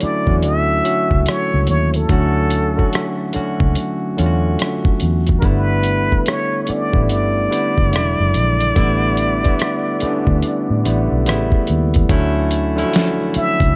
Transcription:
Already playing: tine electric piano A3 C#4 E4 F#4
0.00 tine electric piano D3 F#3 A3 C#4 E4, muted trumpet D5, muted fingered electric bass stroke, closed hi-hat
0.26 fingered electric bass E2, tine electric piano D3 F#3 A3 C#4 F#4, kick
0.43 fingered electric bass D2, muted trumpet E5, closed hi-hat
0.83 tine electric piano D3 F#3 A3 C#4 F#4, closed hi-hat
1.11 fingered electric bass C#2, kick
1.26 muted trumpet C#5, cross-stick, closed hi-hat
1.54 fingered electric bass C#2
1.67 fingered electric bass D#2, muted trumpet C#5, closed hi-hat
1.94 muted trumpet A4, closed hi-hat
2.09 fingered electric bass D2, tine electric piano D3 F#3 A3 C#4 F#4, kick, closed hi-hat
2.50 closed hi-hat
2.77 tine electric piano D3 F#3 A3 C#4 F#4, kick
2.93 cross-stick, closed hi-hat
3.33 tine electric piano D3 F#3 A3 C#4 F#4, muted fingered electric bass stroke, closed hi-hat
3.60 fingered electric bass C#2, kick
3.75 closed hi-hat
4.17 fingered electric bass E2, tine electric piano D3 F#3 A3 C#4 F4, closed hi-hat
4.26 tine electric piano F#4
4.59 cross-stick, closed hi-hat
4.85 muted fingered electric bass stroke, kick
5.00 fingered electric bass E2, closed hi-hat
5.27 kick, closed hi-hat
5.39 fingered electric bass G1, tine electric piano D3 G3 A3 B3, muted trumpet A#4, kick, closed hi-hat
5.44 tine electric piano E4, muted trumpet B4
5.83 closed hi-hat
6.12 kick
6.26 muted trumpet C#5, cross-stick, closed hi-hat
6.63 tine electric piano D3, muted trumpet C#5, closed hi-hat
6.68 tine electric piano G3 A3 B3 C#4, muted trumpet D5, muted fingered electric bass stroke
6.92 fingered electric bass A1, tine electric piano D3 G3 A3 B3 E4, kick
7.09 fingered electric bass G1, muted trumpet D5, closed hi-hat
7.49 tine electric piano D3 G3 A3 B3 E4, closed hi-hat
7.78 fingered electric bass F#1, kick
7.91 fingered electric bass E1, tine electric piano C#3 D3 F#3 G#3 E4, closed hi-hat
7.96 cross-stick
8.20 fingered electric bass F#1
8.34 fingered electric bass A#1, closed hi-hat
8.60 closed hi-hat
8.75 fingered electric bass A1, tine electric piano D3 G3 A3 B3 E4, kick, closed hi-hat
9.17 closed hi-hat
9.43 tine electric piano D3 G3 A3 B3 E4, kick, closed hi-hat
9.59 cross-stick, closed hi-hat
10.00 tine electric piano D3 G3 A3 B3 C#4, muted fingered electric bass stroke, closed hi-hat
10.09 tine electric piano D4
10.27 fingered electric bass D2, kick
10.43 closed hi-hat
10.70 fingered electric bass A2
10.84 fingered electric bass A1, tine electric piano D3 G3 A3 B3 E4, closed hi-hat
11.12 fingered electric bass B1
11.25 fingered electric bass A1, tine electric piano C#3 G3 A3 B3 E4, cross-stick, closed hi-hat
11.52 kick
11.67 fingered electric bass D#2, closed hi-hat
11.94 kick, closed hi-hat
12.09 fingered electric bass D2, tine electric piano D3 F#3 A3 C#4 E4, kick, closed hi-hat
12.51 closed hi-hat
12.76 tine electric piano D3 F3 A3 C#4 E4, closed hi-hat
12.83 tine electric piano F#3
12.93 snare, closed hi-hat
13.34 muted trumpet E5, muted fingered electric bass stroke, closed hi-hat
13.60 fingered electric bass C#2, kick, closed hi-hat

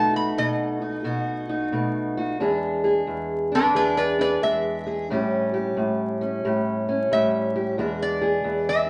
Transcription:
Already playing: steel-string acoustic guitar B2 A3 D#4 F#4, resonator guitar played with a steel bar A5
0.14 steel-string acoustic guitar F#4, resonator guitar played with a steel bar B5
0.38 steel-string acoustic guitar B2, resonator guitar played with a steel bar D#5
0.82 steel-string acoustic guitar D#4
1.04 steel-string acoustic guitar B2 F#4
1.49 steel-string acoustic guitar D#4
1.72 steel-string acoustic guitar B2 A3
2.17 steel-string acoustic guitar F#4
2.40 steel-string acoustic guitar E2 G#3 D4 G#4
2.84 steel-string acoustic guitar G#4
3.07 steel-string acoustic guitar E2
3.52 steel-string acoustic guitar D4, resonator guitar played with a steel bar D4 B4
3.74 steel-string acoustic guitar E2 G#4, resonator guitar played with a steel bar D4 B4
3.97 resonator guitar played with a steel bar B4 D5
4.19 steel-string acoustic guitar D4, resonator guitar played with a steel bar B4 D5
4.42 steel-string acoustic guitar E2 G#3, resonator guitar played with a steel bar E5
4.87 steel-string acoustic guitar G#4
5.10 steel-string acoustic guitar A2 G3 C#4 G4
5.54 steel-string acoustic guitar G4
5.77 steel-string acoustic guitar A2
6.21 steel-string acoustic guitar C#4
6.45 steel-string acoustic guitar A2 G4
6.89 steel-string acoustic guitar C#4
7.11 steel-string acoustic guitar A2 G3, resonator guitar played with a steel bar E5
7.56 steel-string acoustic guitar G4
7.78 steel-string acoustic guitar E2 G#3 D4 G#4
8.02 resonator guitar played with a steel bar D5
8.22 steel-string acoustic guitar G#4
8.44 steel-string acoustic guitar E2
8.69 resonator guitar played with a steel bar E5

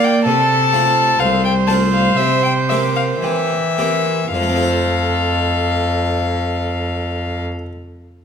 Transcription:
Already playing: harpsichord A#3 D4 F4, cello A#3, violin D5
0.04 violin G5
0.25 harpsichord C3, cello C3, violin A4 A5
0.72 harpsichord A3 C4 F4
1.19 cello C2, harpsichord C2, violin C5 F5
1.45 violin G5
1.67 harpsichord A3 C4 F4, violin A5
1.92 violin F5
2.17 harpsichord C3, cello C3, violin E5
2.44 violin G5
2.69 harpsichord A#3 C4 G4, violin E5
2.96 violin F5
3.21 harpsichord E3, cello E3, violin G4 E5
3.78 harpsichord A#3 C4 G4
4.32 cello F2, harpsichord F3, violin A4 F5
4.41 harpsichord A3
4.49 harpsichord C4
4.56 harpsichord F4
4.62 harpsichord C5

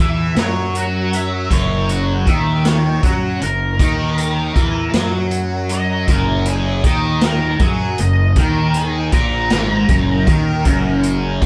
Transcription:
0.00 fingered electric bass E2, distorted electric guitar E3, lead electric guitar E5
0.36 fingered electric bass F#2, distorted electric guitar F#3, lead electric guitar C#5, snare, closed hi-hat
0.75 lead electric guitar F#4, closed hi-hat
1.13 lead electric guitar E5, closed hi-hat
1.51 fingered electric bass F#1, distorted electric guitar F#2, lead electric guitar C#5, kick, closed hi-hat
1.89 lead electric guitar F#4, closed hi-hat
2.26 fingered electric bass D#2, distorted electric guitar D#3, lead electric guitar E5, kick, closed hi-hat
2.65 lead electric guitar C#5, snare, closed hi-hat
3.03 fingered electric bass F#2, distorted electric guitar F#3, lead electric guitar F#4, kick, closed hi-hat
3.41 fingered electric bass F#1, distorted electric guitar F#2, lead electric guitar A#4, closed hi-hat
3.79 fingered electric bass D#2, distorted electric guitar D#3, kick, closed hi-hat
4.18 closed hi-hat
4.56 fingered electric bass E2, distorted electric guitar E3, kick, closed hi-hat
4.93 fingered electric bass F#2, distorted electric guitar F#3, snare, closed hi-hat
5.31 closed hi-hat
5.69 lead electric guitar D#5, closed hi-hat
6.08 fingered electric bass F#1, distorted electric guitar F#2, lead electric guitar A#4, kick, closed hi-hat
6.45 lead electric guitar G#4, closed hi-hat
6.84 fingered electric bass D#2, distorted electric guitar D#3, lead electric guitar D#5, kick, closed hi-hat
7.21 lead electric guitar A#4, snare, closed hi-hat
7.59 fingered electric bass F#2, distorted electric guitar F#3, lead electric guitar G#4, kick, closed hi-hat
7.98 fingered electric bass F#1, distorted electric guitar F#2, lead electric guitar D#5, closed hi-hat
8.36 fingered electric bass D#2, distorted electric guitar D#3, lead electric guitar A#4, kick, closed hi-hat
8.74 lead electric guitar G#4, closed hi-hat
9.12 fingered electric bass A#1, distorted electric guitar A#2, lead electric guitar A#4, kick, closed hi-hat
9.50 fingered electric bass G#1, distorted electric guitar G#2, snare, closed hi-hat
9.89 fingered electric bass F#1, distorted electric guitar F#2, kick, closed hi-hat
10.27 fingered electric bass D#2, distorted electric guitar D#3, kick, closed hi-hat
10.65 fingered electric bass F#1, distorted electric guitar F#2, kick, closed hi-hat
11.03 closed hi-hat
11.41 fingered electric bass D#2, distorted electric guitar D#3, kick, closed hi-hat

